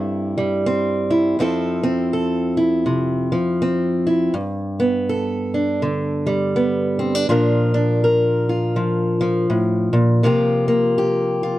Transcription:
0.00 1.36 G2 medium
0.00 0.36 G3 soft
0.00 0.65 C4 medium
0.00 1.09 E4 medium
0.00 1.36 A4 medium
0.38 1.36 G3 medium
0.66 1.36 C4 medium
1.10 1.36 E4 medium
1.39 4.33 F2 medium
1.39 3.31 F3 medium
1.39 1.82 C4 medium
1.39 2.56 E4 medium
1.39 2.13 A4 medium
1.83 3.60 C4 medium
2.13 4.31 A4 medium
2.57 4.05 E4 medium
2.86 3.31 C3 medium
3.32 4.35 F3 medium
3.62 4.31 C4 medium
4.07 4.32 E4 medium
4.34 7.25 G2 medium
4.80 6.55 B3 medium
5.09 7.26 A4 medium
5.54 6.99 D4 soft
5.82 7.26 D3 medium
6.27 7.26 G3 medium
6.56 7.26 B3 medium
6.99 7.15 C4 medium
7.15 7.28 D4 soft
7.29 9.49 A#2 medium
7.29 8.75 F3 medium
7.29 7.73 D4 medium
7.29 8.48 F4 medium
7.29 8.03 A#4 medium
7.74 10.21 D4 medium
8.04 10.21 A#4 medium
8.49 10.22 F4 medium
8.76 9.20 F3 medium
9.21 10.23 F3 medium
9.50 9.92 A2 medium
9.93 10.23 A#2 medium
10.23 11.59 C3 medium
10.23 11.59 F3 medium
10.23 10.67 A#3 soft
10.23 11.42 F4 medium
10.23 10.97 G4 medium
10.68 11.59 A#3 medium
10.98 11.59 G4 medium
11.43 11.59 F4 medium

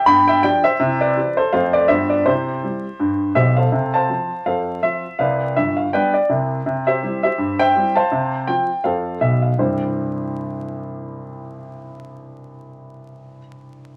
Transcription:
0.06 0.38 G2 medium
0.06 0.28 B3 soft
0.06 0.26 G5 medium
0.06 0.28 B5 loud
0.28 0.43 E5 medium
0.28 0.42 G5 medium
0.43 0.64 F3 soft
0.43 0.64 D4 medium
0.43 0.64 G4 medium
0.43 0.64 D5 medium
0.43 0.64 G5 loud
0.64 0.99 C5 medium
0.64 1.01 E5 loud
0.80 1.11 C3 medium
0.80 1.01 E4 medium
1.01 1.35 B4 medium
1.01 1.37 D5 medium
1.17 1.37 E3 soft
1.17 1.37 C4 soft
1.17 1.37 G4 soft
1.37 1.52 A4 medium
1.37 1.52 C5 medium
1.53 1.84 F2 medium
1.53 1.74 A3 medium
1.53 1.73 C4 soft
1.53 1.74 F4 soft
1.53 1.73 C5 medium
1.53 1.74 F5 medium
1.73 1.89 B4 medium
1.73 1.89 D5 medium
1.88 2.20 G2 medium
1.88 2.09 G3 soft
1.88 2.10 B3 soft
1.88 2.10 F4 soft
1.88 2.09 C5 medium
1.88 2.10 E5 medium
2.10 2.25 B4 medium
2.10 2.25 D5 medium
2.26 2.57 C3 medium
2.26 2.47 E4 medium
2.26 3.34 G4 medium
2.26 3.35 C5 medium
2.63 2.83 G3 soft
2.63 2.83 C4 soft
2.63 2.83 E4 soft
3.00 3.31 G2 medium
3.35 3.65 B1 medium
3.35 3.65 B2 medium
3.35 3.56 G4 medium
3.35 3.56 C5 medium
3.35 3.57 E5 medium
3.57 3.92 A4 medium
3.57 3.92 C5 medium
3.57 3.94 F5 medium
3.72 4.03 C3 medium
3.94 4.43 C5 medium
3.94 4.43 F5 medium
3.94 4.46 A5 medium
4.10 4.30 F3 soft
4.10 4.30 C4 soft
4.10 4.30 F4 soft
4.46 4.77 F2 soft
4.46 4.80 A4 medium
4.46 4.81 C5 soft
4.46 4.83 F5 medium
4.83 5.03 F3 soft
4.83 5.03 C4 soft
4.83 5.04 F4 soft
4.83 5.19 E5 medium
5.19 5.49 C2 medium
5.19 5.49 C3 medium
5.19 5.54 B4 medium
5.19 5.54 D5 medium
5.19 5.56 F5 medium
5.56 5.85 G1 medium
5.56 5.85 G2 medium
5.56 5.77 E5 medium
5.77 5.92 F5 medium
5.93 6.13 G3 soft
5.93 6.13 B3 soft
5.93 6.13 D4 soft
5.93 6.13 B4 medium
5.93 6.12 D5 medium
5.93 6.14 G5 medium
6.14 6.29 D5 medium
6.29 6.59 C2 medium
6.29 6.58 C3 medium
6.66 6.97 C3 medium
6.87 7.21 G4 medium
6.87 7.22 C5 medium
6.87 7.22 E5 medium
7.03 7.23 G3 soft
7.03 7.23 C4 soft
7.03 7.23 E4 soft
7.23 7.58 G4 medium
7.23 7.58 C5 medium
7.23 7.59 E5 medium
7.38 7.69 G2 medium
7.59 7.94 C5 medium
7.59 7.94 E5 medium
7.59 7.96 G5 loud
7.75 7.96 G3 soft
7.75 7.96 C4 medium
7.75 7.96 E4 medium
7.95 8.45 C5 medium
7.95 8.45 F5 medium
7.95 8.48 A5 medium
8.12 8.43 C3 medium
8.47 8.68 F3 soft
8.47 8.69 C4 soft
8.47 8.69 F4 soft
8.47 8.85 G5 medium
8.84 9.16 F2 medium
8.84 9.19 A4 medium
8.84 9.19 C5 medium
8.84 9.21 F5 medium
9.21 9.51 B1 medium
9.21 9.51 B2 medium
9.21 9.43 E5 medium
9.42 9.58 F5 medium
9.58 13.38 C2 medium
9.58 13.37 G2 medium
9.58 13.38 E3 medium
9.58 13.38 G3 soft
9.58 13.39 C4 medium
9.58 13.39 E4 medium
9.58 13.39 C5 medium

